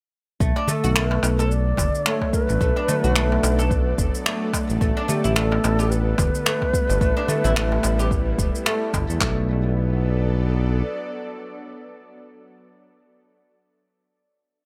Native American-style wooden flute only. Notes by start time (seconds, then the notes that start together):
0.69 A4
0.96 A#4
1.07 B4
1.51 D5
2.07 C#5
2.34 B4
5.08 G4
5.36 A4
5.90 B4